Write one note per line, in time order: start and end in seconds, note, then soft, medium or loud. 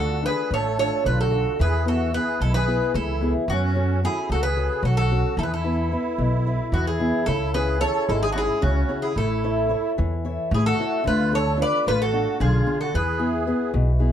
0.00 0.27 D2 loud
0.00 0.22 D3 medium
0.00 0.22 D4 soft
0.00 0.23 F4 soft
0.00 0.22 F#4 medium
0.00 0.23 A4 soft
0.00 0.25 A4 medium
0.23 0.67 D4 soft
0.23 0.68 F4 soft
0.23 0.50 G#4 medium
0.23 0.67 A4 soft
0.23 0.50 B4 loud
0.51 0.89 A1 medium
0.51 1.03 A3 medium
0.51 0.78 A4 medium
0.51 0.78 C#5 medium
0.78 1.21 D4 soft
0.78 1.22 F4 soft
0.78 1.22 A4 soft
0.78 1.04 A4 medium
0.78 1.04 C#5 loud
1.04 1.43 B1 medium
1.04 1.57 D3 medium
1.04 1.20 B4 medium
1.08 1.19 F4 medium
1.21 1.58 F#4 medium
1.21 1.57 A4 medium
1.31 1.53 D4 soft
1.31 1.53 F4 soft
1.31 1.53 A4 soft
1.59 2.16 E2 loud
1.59 2.12 E3 medium
1.59 1.85 G#4 medium
1.59 1.85 B4 medium
1.85 2.12 B3 soft
1.85 2.12 E4 soft
1.85 2.12 F#4 medium
1.85 2.12 G#4 medium
1.85 2.12 A4 medium
2.13 2.56 B3 soft
2.13 2.57 E4 soft
2.13 2.57 G#4 soft
2.13 2.40 G#4 medium
2.13 2.39 B4 loud
2.40 2.78 B1 medium
2.40 2.93 B2 medium
2.40 2.54 E4 medium
2.40 2.54 A4 medium
2.54 2.93 G#4 medium
2.54 2.92 B4 loud
2.67 3.11 B3 soft
2.67 3.11 E4 soft
2.67 3.11 G#4 soft
2.94 3.32 C#2 loud
2.94 3.47 E3 medium
2.94 3.34 E4 medium
2.94 3.33 A4 medium
3.21 3.43 B3 soft
3.21 3.44 E4 soft
3.21 3.44 G#4 soft
3.48 4.05 F#2 loud
3.48 4.02 F#3 medium
3.48 4.00 C#4 medium
3.48 4.05 F#4 medium
3.75 4.02 C#4 soft
3.75 4.03 F#4 soft
3.75 4.03 A4 medium
4.03 4.46 C#4 soft
4.03 4.29 E4 medium
4.03 4.47 F#4 soft
4.03 4.29 G#4 loud
4.03 4.47 A4 soft
4.29 4.68 C#2 medium
4.29 4.82 C#3 medium
4.29 4.44 F#4 medium
4.29 4.42 A4 medium
4.43 4.82 G#4 medium
4.43 4.85 B4 loud
4.57 5.00 C#4 soft
4.57 5.00 F#4 soft
4.57 5.00 A4 soft
4.82 5.21 B1 loud
4.82 5.35 F#3 medium
4.82 4.97 F#4 medium
4.82 4.96 A4 medium
4.97 5.36 F#4 medium
4.97 5.35 A4 medium
5.11 5.33 C#4 soft
5.11 5.33 F#4 soft
5.11 5.33 A4 medium
5.37 5.94 E2 loud
5.37 5.91 E3 medium
5.37 5.46 E4 medium
5.37 5.43 A4 medium
5.43 5.52 G#4 medium
5.43 5.51 B4 medium
5.54 6.87 E4 medium
5.54 6.97 A4 medium
5.64 5.91 B3 soft
5.64 5.91 E4 soft
5.64 5.92 B4 soft
5.92 6.35 B3 soft
5.92 6.35 E4 soft
5.92 6.36 B4 soft
6.18 6.56 B1 medium
6.18 6.71 B2 medium
6.46 6.89 B3 soft
6.46 6.90 E4 soft
6.46 6.90 B4 soft
6.72 7.10 E2 loud
6.72 7.26 E3 medium
6.72 6.86 B3 medium
6.72 6.87 F#4 medium
6.87 7.25 E4 medium
6.87 7.25 G#4 medium
6.99 7.21 B3 soft
6.99 7.22 E4 soft
6.99 7.22 G#4 medium
7.26 7.84 C#2 medium
7.26 7.80 C#3 medium
7.26 7.52 E4 medium
7.26 7.52 A4 loud
7.54 7.79 C#4 soft
7.54 7.80 E4 soft
7.54 7.79 G#4 medium
7.54 7.80 G#4 medium
7.54 7.80 B4 loud
7.80 8.24 C#4 soft
7.80 8.24 E4 soft
7.80 8.24 G#4 soft
7.80 8.05 A4 medium
7.80 8.06 C#5 loud
8.06 8.46 G#1 loud
8.06 8.61 G#3 medium
8.06 8.18 E4 medium
8.06 8.21 A4 medium
8.19 8.27 E4 medium
8.19 8.29 G#4 loud
8.31 8.36 D4 medium
8.31 8.59 E4 medium
8.31 8.38 F#4 medium
8.35 8.78 C#4 soft
8.35 8.78 E4 soft
8.35 8.79 G#4 soft
8.35 8.61 G#4 loud
8.61 8.82 C#2 loud
8.61 9.14 C#3 medium
8.61 8.99 C#4 medium
8.61 9.04 F#4 medium
8.89 9.10 C#4 soft
8.89 9.11 E4 soft
8.89 9.11 G#4 medium
9.02 9.13 E4 medium
9.02 9.15 G#4 medium
9.14 9.73 A1 medium
9.14 9.68 A3 medium
9.14 9.92 E4 medium
9.14 9.94 A4 medium
9.44 9.68 E4 medium
9.44 9.69 A4 soft
9.44 9.69 C#5 soft
9.69 10.13 E4 medium
9.69 10.13 A4 soft
9.69 10.14 C#5 medium
9.98 10.36 E2 loud
9.98 10.50 E3 medium
10.25 10.68 E4 soft
10.25 10.68 A4 soft
10.25 10.68 C#5 medium
10.51 10.70 A1 loud
10.51 11.03 A3 medium
10.51 10.65 E4 medium
10.51 10.65 G#4 medium
10.66 11.03 F#4 medium
10.66 11.03 A4 medium
10.79 11.00 E4 medium
10.79 11.01 A4 soft
10.79 11.00 C#5 medium
11.04 11.62 D2 loud
11.04 11.57 D3 medium
11.04 11.34 B4 loud
11.08 11.32 F4 medium
11.32 11.56 D4 soft
11.32 11.56 F4 soft
11.32 11.57 A4 medium
11.32 11.58 A4 medium
11.32 11.59 C#5 loud
11.57 12.01 D4 soft
11.57 12.01 F4 soft
11.57 12.02 A4 medium
11.57 11.85 B4 medium
11.62 11.88 D5 loud
11.86 12.24 A1 medium
11.86 12.38 A3 medium
11.86 12.00 F4 medium
11.86 12.00 B4 loud
12.02 12.38 F#4 medium
12.02 12.38 A4 medium
12.13 12.56 D4 soft
12.13 12.56 F4 soft
12.13 12.56 A4 medium
12.40 12.59 B1 loud
12.40 12.92 D3 medium
12.40 12.78 F4 medium
12.40 12.78 G#4 medium
12.66 12.88 D4 soft
12.66 12.88 F4 soft
12.66 12.89 A4 medium
12.81 12.93 F#4 medium
12.81 12.93 A4 medium
12.94 13.51 E2 medium
12.94 13.46 E3 medium
12.94 13.72 G#4 medium
12.94 13.71 B4 medium
13.19 13.46 B3 soft
13.19 13.46 E4 soft
13.19 13.47 G#4 medium
13.47 13.90 B3 soft
13.47 13.91 E4 soft
13.47 13.91 G#4 medium
13.74 14.12 B1 loud
13.74 14.12 B2 medium
13.99 14.12 B3 soft
13.99 14.12 E4 soft
13.99 14.12 G#4 soft